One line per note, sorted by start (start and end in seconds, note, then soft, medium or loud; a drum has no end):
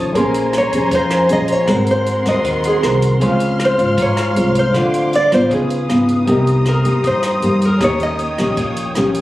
0.00 0.11 C#2 medium
0.00 0.12 D#3 soft
0.00 0.14 F3 medium
0.00 0.12 A3 soft
0.00 0.11 C#4 soft
0.00 0.13 C#4 medium
0.00 0.13 D#4 medium
0.00 0.13 A4 medium
0.00 0.17 A4 medium
0.00 0.15 C#5 medium
0.00 0.15 A5 medium
0.00 0.12 D#6 medium
0.13 0.69 A#1 medium
0.13 0.90 A#3 medium
0.13 1.08 C#4 medium
0.13 0.53 C#4 medium
0.13 0.53 G#4 medium
0.13 1.09 A#4 medium
0.13 0.54 C5 medium
0.13 1.68 G#5 medium
0.13 1.67 A#5 medium
0.13 1.67 C6 medium
0.13 kick medium
0.13 closed hi-hat medium
0.17 1.11 G#5 medium
0.17 1.10 C6 soft
0.34 closed hi-hat soft
0.53 cross-stick soft
0.53 closed hi-hat soft
0.58 0.94 C#5 medium
0.72 0.90 F2 medium
0.72 1.28 C#4 medium
0.72 1.28 G#4 medium
0.72 1.28 C5 medium
0.72 kick soft
0.72 closed hi-hat soft
0.91 1.27 F2 medium
0.91 1.67 F3 medium
0.91 1.32 C5 medium
0.91 kick medium
0.91 closed hi-hat medium
1.10 1.68 C#4 soft
1.10 1.68 A#4 soft
1.10 1.69 C5 soft
1.10 1.69 G#5 soft
1.10 cross-stick medium
1.10 closed hi-hat soft
1.29 1.66 A#1 medium
1.29 1.55 C#4 soft
1.29 1.55 G#4 soft
1.29 1.55 C5 medium
1.29 1.52 D#5 loud
1.29 closed hi-hat soft
1.48 kick soft
1.48 closed hi-hat soft
1.52 1.71 C#5 medium
1.66 2.22 G#1 medium
1.66 2.43 G#3 medium
1.66 3.17 C4 medium
1.66 2.23 C4 medium
1.66 2.23 F#4 medium
1.66 3.18 G#4 soft
1.66 3.20 A#4 medium
1.66 2.23 A#4 medium
1.66 3.20 F#5 medium
1.66 3.20 C6 medium
1.66 kick medium
1.66 cross-stick medium
1.66 closed hi-hat soft
1.70 3.19 A#4 soft
1.70 1.89 C5 medium
1.70 3.20 F#5 medium
1.87 closed hi-hat soft
1.91 2.28 C5 medium
2.06 closed hi-hat soft
2.25 2.43 D#2 medium
2.25 2.80 C4 medium
2.25 2.80 F#4 medium
2.25 2.80 A#4 medium
2.25 2.67 D#5 loud
2.25 kick soft
2.25 cross-stick soft
2.25 closed hi-hat soft
2.44 2.80 D#2 medium
2.44 3.20 D#3 medium
2.44 kick medium
2.44 closed hi-hat medium
2.64 3.01 G#4 medium
2.64 closed hi-hat soft
2.83 3.19 C2 medium
2.83 3.19 C4 soft
2.83 3.19 F#4 medium
2.83 3.19 A#4 medium
2.83 cross-stick medium
2.83 closed hi-hat soft
3.02 kick soft
3.02 closed hi-hat soft
3.20 3.75 C#2 loud
3.20 3.96 C#3 medium
3.20 3.76 G#3 medium
3.20 3.76 C4 medium
3.20 3.76 F4 medium
3.20 4.71 G#4 medium
3.20 6.25 F5 medium
3.20 4.73 F5 medium
3.20 5.49 C6 medium
3.20 4.72 C6 medium
3.20 4.73 F6 medium
3.20 kick medium
3.20 closed hi-hat medium
3.40 closed hi-hat soft
3.60 cross-stick medium
3.60 closed hi-hat soft
3.65 4.02 C5 medium
3.78 3.97 G#1 medium
3.78 4.33 G#3 medium
3.78 4.34 F4 medium
3.78 kick soft
3.78 closed hi-hat soft
3.98 4.34 G#1 medium
3.98 4.73 G#2 medium
3.98 kick medium
3.98 closed hi-hat medium
4.02 4.59 C#5 medium
4.17 cross-stick medium
4.17 closed hi-hat soft
4.36 4.72 C2 medium
4.36 4.61 G#3 medium
4.36 4.61 C4 medium
4.36 4.61 F4 medium
4.36 closed hi-hat soft
4.55 5.15 C5 medium
4.55 kick soft
4.55 closed hi-hat soft
4.71 5.28 D2 loud
4.71 5.49 D3 soft
4.71 5.13 A3 medium
4.71 5.48 D4 soft
4.71 5.49 A4 soft
4.71 5.50 C5 soft
4.71 5.50 D6 medium
4.71 kick medium
4.71 cross-stick medium
4.71 closed hi-hat soft
4.75 5.13 C4 medium
4.75 5.13 F4 medium
4.75 5.51 F5 medium
4.94 closed hi-hat soft
5.13 5.34 D5 loud
5.13 closed hi-hat soft
5.32 5.50 A1 medium
5.32 5.87 B3 medium
5.32 5.87 D#4 medium
5.32 5.87 F4 medium
5.32 5.53 C5 medium
5.32 kick soft
5.32 cross-stick medium
5.32 closed hi-hat soft
5.48 5.87 C#2 loud
5.48 6.26 C#3 medium
5.48 6.25 C#4 soft
5.48 6.26 F4 soft
5.48 6.27 B4 soft
5.48 6.28 B4 medium
5.48 9.21 D#6 medium
5.48 kick medium
5.48 closed hi-hat medium
5.53 6.06 G#4 medium
5.53 6.28 D#5 soft
5.70 closed hi-hat soft
5.89 6.25 G#1 medium
5.89 6.25 B3 medium
5.89 6.25 D#4 soft
5.89 6.25 F4 medium
5.89 cross-stick medium
5.89 closed hi-hat soft
6.08 kick soft
6.08 closed hi-hat soft
6.25 6.81 C2 loud
6.25 7.03 C3 medium
6.25 6.66 A#3 medium
6.25 7.76 C4 medium
6.25 6.66 D#4 medium
6.25 7.77 G4 medium
6.25 7.79 C5 medium
6.25 7.79 A#5 medium
6.25 kick medium
6.25 closed hi-hat medium
6.29 6.66 G4 medium
6.29 7.78 A#4 medium
6.29 7.80 D#5 medium
6.47 closed hi-hat soft
6.66 7.07 A#4 medium
6.66 cross-stick medium
6.66 closed hi-hat soft
6.85 7.03 G2 medium
6.85 7.40 A#3 medium
6.85 7.40 D#4 medium
6.85 7.40 G4 medium
6.85 kick soft
6.85 closed hi-hat soft
7.04 7.40 G2 medium
7.04 7.79 G2 medium
7.04 7.65 C5 medium
7.04 kick medium
7.04 closed hi-hat medium
7.23 cross-stick medium
7.23 closed hi-hat medium
7.42 7.79 G2 medium
7.42 7.67 A#3 soft
7.42 7.68 D#4 medium
7.42 7.68 G4 medium
7.42 closed hi-hat soft
7.61 7.82 A#4 medium
7.61 kick soft
7.61 closed hi-hat soft
7.78 8.34 D#2 loud
7.78 8.56 D#3 medium
7.78 8.19 A#3 medium
7.78 9.21 C#4 medium
7.78 9.21 G4 medium
7.78 9.21 A#4 soft
7.78 9.21 C#5 medium
7.78 9.21 G5 medium
7.78 kick medium
7.78 cross-stick medium
7.78 closed hi-hat medium
7.82 8.19 C#4 medium
7.82 8.20 G4 medium
7.82 8.02 C#5 medium
7.82 9.21 D#5 medium
8.00 8.55 D#5 medium
8.00 closed hi-hat soft
8.19 closed hi-hat soft
8.38 8.56 A#1 medium
8.38 8.93 A#3 medium
8.38 8.93 C#4 medium
8.38 8.93 G4 medium
8.38 kick soft
8.38 cross-stick medium
8.38 closed hi-hat soft
8.57 8.93 A#1 medium
8.57 9.21 A#2 medium
8.57 kick medium
8.57 closed hi-hat medium
8.76 closed hi-hat soft
8.95 9.21 A#1 medium
8.95 9.21 A#3 soft
8.95 9.21 C#4 medium
8.95 9.21 G4 medium
8.95 cross-stick medium
8.95 closed hi-hat soft
9.14 kick soft
9.14 closed hi-hat soft